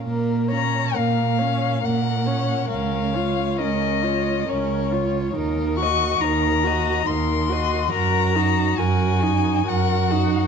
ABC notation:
X:1
M:3/4
L:1/8
Q:1/4=69
K:Bbm
V:1 name="Violin"
z b f2 g2 | f2 e2 d2 | z d' b2 c'2 | b2 a2 g2 |]
V:2 name="Violin"
B d B d B d | B d B d B d | B e B e B e | B G B G B G |]
V:3 name="Viola"
B, D B, D B, D | D F D F D F | E G E G E G | G E G E G E |]
V:4 name="Cello" clef=bass
B,,2 B,,2 B,,2 | D,,2 D,,2 D,,2 | E,,2 E,,2 E,,2 | G,,2 G,,2 G,,2 |]